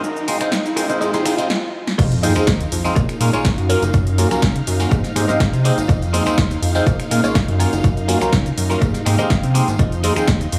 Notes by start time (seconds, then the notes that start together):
Already playing: D#4 F4 F#4 A#4 D#5, riser
0.04 F#2, shaker
0.17 shaker
0.28 G#3 C4 D#4 F4 C5, open hi-hat, shaker
0.41 C#2 G#3 C4 D#4 F4 C5, finger snap, muted clean electric guitar stroke, closed hi-hat, shaker
0.52 C#2, muted clean electric guitar stroke, snare, shaker
0.65 muted clean electric guitar stroke, shaker
0.76 F#2 G#3 C4 D#4 F4 F#4 A#4 C5, open hi-hat, shaker
0.89 G#3 C4 D#4 F4 C5, closed hi-hat, shaker
1.01 G#2 G#3 C4 D#4 F4 C5, shaker
1.13 G#2 G#3 C4 D#4 F4 G4 G#4 C5, snare, closed hi-hat, shaker
1.25 G#2 G#3 C4 D#4 F4 C5, finger snap, open hi-hat, shaker
1.38 G#3 C4 D#4 F4 C5, closed hi-hat, shaker
1.50 snare
1.87 snare
1.98 F2 D#4 F4 G#4 C5 D#5 F5, kick, closed hi-hat, crash, tambourine, sub drop, shaker
2.12 closed hi-hat, tambourine, shaker
2.23 G#3 C4 D#4 F4 G#4 C5 D#5, open hi-hat, high conga, shaker
2.35 D#2 G#3 C4 D#4 F4 C5, finger snap, closed hi-hat, tambourine, low conga, shaker
2.47 D#2, kick, snare, closed hi-hat, tambourine, shaker
2.60 closed hi-hat, tambourine, shaker
2.72 F2, open hi-hat, shaker
2.85 G#3 C4 D#4 F4 C5, tambourine, shaker
2.96 A#2 F4 G#4 A#4 C#5, kick, closed hi-hat, tambourine, shaker
3.09 A#2, finger snap, closed hi-hat, tambourine, shaker
3.21 A#2 G#3 A#3 C#4 F4 A#4, open hi-hat, high conga, shaker
3.33 A#1 G#3 A#3 C#4 F4 G#4 A#4 C#5, closed hi-hat, tambourine, shaker
3.45 A#1, kick, snare, closed hi-hat, tambourine, shaker
3.58 F#2, closed hi-hat, tambourine
3.69 F#3 A#3 C#4 F4 F#4 A#4 C#5, open hi-hat, shaker
3.82 F#1, closed hi-hat, tambourine, shaker
3.93 F#2, kick, closed hi-hat, tambourine, shaker
4.07 closed hi-hat, tambourine, shaker
4.18 F#3 A#3 C#4 F4 F#4 A#4 C#5, open hi-hat, high conga, shaker
4.31 C#2 F#3 A#3 C#4 F4 A#4, finger snap, closed hi-hat, tambourine, low conga, shaker
4.42 C#2, kick, snare, closed hi-hat, shaker
4.56 closed hi-hat, tambourine, shaker
4.67 F#2, open hi-hat, shaker
4.80 F#3 A#3 C#4 F4 A#4, tambourine, shaker
4.91 G#2 G4 G#4 C5 D#5, kick, closed hi-hat, tambourine, high conga, shaker
5.04 G#2, snare, closed hi-hat, tambourine, shaker
5.16 G#2 G#3 C4 D#4 G4 C5, finger snap, open hi-hat, high conga, shaker
5.28 G#1 G#3 C4 D#4 G4 G#4 C5 D#5 F5, closed hi-hat, tambourine, low conga, shaker
5.40 G#1, kick, snare, closed hi-hat, tambourine, shaker
5.53 C3, closed hi-hat, tambourine, low conga, shaker
5.64 G#3 C4 D#4 G4 C5, muted clean electric guitar stroke, open hi-hat, high conga, shaker
5.77 G#1, closed hi-hat, tambourine, shaker
5.88 F2 F4 G#4 C5 D#5, kick, closed hi-hat, tambourine, shaker
6.02 closed hi-hat, tambourine, shaker
6.13 G#3 C4 D#4 F4 G#4 C5 D#5, open hi-hat, high conga, shaker
6.26 D#2 G#3 C4 D#4 F4 C5, finger snap, closed hi-hat, tambourine, low conga, shaker
6.38 D#2, kick, snare, closed hi-hat, tambourine, shaker
6.50 closed hi-hat, tambourine, shaker
6.62 F2, open hi-hat, shaker
6.75 G#3 C4 D#4 F4 C5, tambourine, shaker
6.86 A#2 F4 G#4 A#4 C#5, kick, closed hi-hat, tambourine, shaker
6.99 A#2, finger snap, closed hi-hat, tambourine, shaker
7.10 A#2 G#3 A#3 C#4 F4 A#4, open hi-hat, high conga, shaker
7.24 A#1 G#3 A#3 C#4 F4 G#4 A#4 C#5, closed hi-hat, tambourine, shaker
7.35 A#1, kick, snare, closed hi-hat, shaker
7.48 F#2, closed hi-hat, tambourine
7.60 F#3 A#3 C#4 F4 F#4 A#4 C#5, open hi-hat, shaker
7.73 F#1, closed hi-hat, tambourine, shaker
7.84 F#2, kick, closed hi-hat, tambourine, shaker
7.97 closed hi-hat, tambourine, shaker
8.08 F#3 A#3 C#4 F4 F#4 A#4 C#5, open hi-hat, high conga, shaker
8.21 C#2 F#3 A#3 C#4 F4 A#4, finger snap, closed hi-hat, tambourine, low conga, shaker
8.33 C#2, kick, snare, closed hi-hat, tambourine, shaker
8.46 closed hi-hat, tambourine, shaker
8.57 F#2, open hi-hat, shaker
8.70 F#3 A#3 C#4 F4 A#4, tambourine, shaker
8.81 G#2 G4 G#4 C5 D#5, kick, closed hi-hat, tambourine, high conga, shaker
8.94 G#2, snare, closed hi-hat, tambourine, shaker
9.05 G#2 G#3 C4 D#4 G4 C5, finger snap, open hi-hat, high conga, shaker
9.18 G#1 G#3 C4 D#4 G4 G#4 C5 D#5 F5, closed hi-hat, tambourine, low conga, shaker
9.30 G#1, kick, snare, closed hi-hat, tambourine, shaker
9.43 C3, closed hi-hat, tambourine, low conga, shaker
9.54 G#3 C4 D#4 G4 C5, muted clean electric guitar stroke, open hi-hat, high conga, shaker
9.68 G#1, closed hi-hat, tambourine, shaker
9.79 F2 D#4 F4 G#4 C5 D#5 C6, kick, closed hi-hat, tambourine, shaker
9.92 closed hi-hat, tambourine, shaker
10.03 G#3 C4 D#4 F4 G#4 C5 D#5, open hi-hat, high conga, shaker
10.16 D#2 G#3 C4 D#4 F4 C5, finger snap, closed hi-hat, tambourine, low conga, shaker
10.28 D#2, kick, snare, closed hi-hat, tambourine, shaker
10.41 closed hi-hat, tambourine, shaker
10.52 F2, open hi-hat, shaker